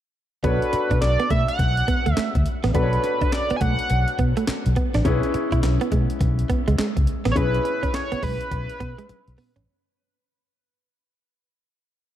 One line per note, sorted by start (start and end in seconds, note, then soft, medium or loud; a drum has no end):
0.43 0.58 B1 medium
0.43 0.55 B3 medium
0.43 2.70 D4 medium
0.43 2.71 F#4 medium
0.43 2.71 A4 medium
0.43 0.98 B4 medium
0.43 2.72 C#5 medium
0.43 kick loud
0.43 closed hi-hat medium
0.62 closed hi-hat medium
0.73 muted clean electric guitar stroke soft
0.73 muted fingered electric bass stroke soft
0.73 closed hi-hat medium
0.91 0.99 B2 loud
0.91 0.98 D4 medium
0.91 kick medium
0.91 closed hi-hat medium
1.01 1.16 B1 medium
1.01 1.32 D5 loud
1.01 muted clean electric guitar stroke soft
1.01 snare loud
1.01 clap medium
1.01 closed hi-hat medium
1.20 1.26 B3 medium
1.20 closed hi-hat soft
1.30 1.44 B2 loud
1.30 1.42 A3 medium
1.30 1.48 E5 loud
1.30 kick loud
1.30 closed hi-hat medium
1.48 2.14 F#5 loud
1.48 closed hi-hat medium
1.59 1.81 B1 medium
1.59 muted clean electric guitar stroke soft
1.59 kick medium
1.59 closed hi-hat medium
1.77 closed hi-hat medium
1.88 1.99 B3 medium
1.88 kick medium
1.88 closed hi-hat medium
2.06 2.15 D2 medium
2.06 2.13 A3 medium
2.06 closed hi-hat medium
2.14 2.28 A3 medium
2.14 2.42 E5 loud
2.14 muted fingered electric bass stroke soft
2.14 snare loud
2.14 clap medium
2.14 closed hi-hat medium
2.35 2.43 D2 medium
2.35 muted clean electric guitar stroke soft
2.35 kick medium
2.35 closed hi-hat medium
2.46 closed hi-hat medium
2.64 2.72 A1 medium
2.64 2.71 B3 medium
2.64 snare medium
2.64 closed hi-hat soft
2.74 2.96 B1 loud
2.74 2.86 B3 medium
2.74 5.01 D4 medium
2.74 5.02 F#4 medium
2.74 5.02 A4 medium
2.74 3.34 B4 medium
2.74 2.84 B4 medium
2.74 kick loud
2.74 closed hi-hat medium
2.83 5.06 C#5 medium
2.93 closed hi-hat soft
3.04 muted clean electric guitar stroke soft
3.04 closed hi-hat medium
3.21 3.28 D4 medium
3.21 muted fingered electric bass stroke soft
3.21 kick medium
3.21 closed hi-hat soft
3.32 3.58 D5 loud
3.32 muted clean electric guitar stroke soft
3.32 snare loud
3.32 clap medium
3.32 closed hi-hat medium
3.50 3.57 B3 medium
3.50 muted fingered electric bass stroke soft
3.50 closed hi-hat medium
3.56 3.62 G#5 medium
3.61 3.75 B1 medium
3.61 3.73 A3 medium
3.61 4.19 F#5 loud
3.61 kick loud
3.61 closed hi-hat medium
3.79 closed hi-hat medium
3.90 4.04 B1 medium
3.90 muted clean electric guitar stroke soft
3.90 closed hi-hat medium
4.08 closed hi-hat medium
4.19 4.33 B2 medium
4.19 4.30 B3 medium
4.19 kick medium
4.19 closed hi-hat medium
4.37 4.44 A3 medium
4.37 closed hi-hat medium
4.47 muted clean electric guitar stroke soft
4.47 muted fingered electric bass stroke soft
4.47 snare loud
4.47 clap medium
4.47 closed hi-hat medium
4.66 4.74 B1 medium
4.66 closed hi-hat medium
4.76 4.88 B3 medium
4.76 kick medium
4.76 closed hi-hat medium
4.94 5.03 A1 medium
4.94 5.01 D4 medium
4.94 snare medium
4.94 closed hi-hat soft
5.05 5.19 B1 loud
5.05 7.32 C#4 medium
5.05 5.17 C#4 medium
5.05 7.32 E4 medium
5.05 7.33 G#4 medium
5.05 7.33 B4 medium
5.05 kick loud
5.05 closed hi-hat medium
5.23 closed hi-hat soft
5.34 muted clean electric guitar stroke soft
5.34 muted fingered electric bass stroke soft
5.34 closed hi-hat medium
5.52 5.61 B2 medium
5.52 5.59 E4 medium
5.52 kick medium
5.52 closed hi-hat soft
5.63 5.77 B1 medium
5.63 muted clean electric guitar stroke soft
5.63 snare loud
5.63 clap medium
5.63 closed hi-hat medium
5.81 5.88 B3 medium
5.81 closed hi-hat medium
5.92 6.06 B2 medium
5.92 6.03 G#3 medium
5.92 kick loud
5.92 closed hi-hat medium
6.10 closed hi-hat medium
6.21 6.43 B1 medium
6.21 muted clean electric guitar stroke soft
6.21 kick loud
6.21 closed hi-hat medium
6.39 closed hi-hat medium
6.50 6.61 B3 medium
6.50 kick medium
6.50 closed hi-hat medium
6.68 6.76 C#2 medium
6.68 6.74 G#3 medium
6.68 closed hi-hat medium
6.78 6.90 G#3 medium
6.78 snare loud
6.78 clap medium
6.78 closed hi-hat medium
6.97 7.05 C#2 medium
6.97 muted clean electric guitar stroke soft
6.97 kick medium
6.97 closed hi-hat medium
7.07 closed hi-hat medium
7.25 7.34 A1 medium
7.25 7.32 B3 medium
7.25 snare medium
7.25 closed hi-hat medium
7.32 7.38 C#5 medium
7.36 7.58 B1 loud
7.36 9.63 C#4 medium
7.36 7.47 C#4 medium
7.36 9.63 E4 medium
7.36 9.64 G#4 medium
7.36 7.96 B4 loud
7.36 9.64 B4 medium
7.36 kick loud
7.36 closed hi-hat medium
7.54 closed hi-hat soft
7.65 muted clean electric guitar stroke soft
7.65 closed hi-hat medium
7.83 7.90 C#4 medium
7.83 muted fingered electric bass stroke soft
7.83 kick medium
7.83 closed hi-hat soft
7.94 8.25 C#5 loud
7.94 muted clean electric guitar stroke soft
7.94 snare loud
7.94 clap medium
7.94 closed hi-hat medium
8.12 8.19 B3 medium
8.12 muted fingered electric bass stroke soft
8.12 closed hi-hat medium
8.22 8.37 B1 medium
8.22 8.34 G#3 medium
8.22 9.38 B4 loud
8.22 kick loud
8.22 open hi-hat medium
8.41 closed hi-hat medium
8.51 8.65 B1 medium
8.51 muted clean electric guitar stroke soft
8.51 kick loud
8.51 closed hi-hat medium
8.69 closed hi-hat medium
8.80 8.94 B2 medium
8.80 8.92 B3 medium
8.80 kick medium
8.80 closed hi-hat medium
8.98 9.05 G#3 medium
8.98 closed hi-hat medium
9.09 muted clean electric guitar stroke soft
9.09 muted fingered electric bass stroke soft
9.09 closed hi-hat medium
9.09 high tom medium
9.28 9.36 B1 medium
9.28 closed hi-hat medium
9.38 9.49 B3 medium
9.38 mid tom medium
9.38 open hi-hat medium
9.56 9.65 A1 medium
9.56 9.63 C#4 medium
9.56 closed hi-hat medium
9.56 floor tom medium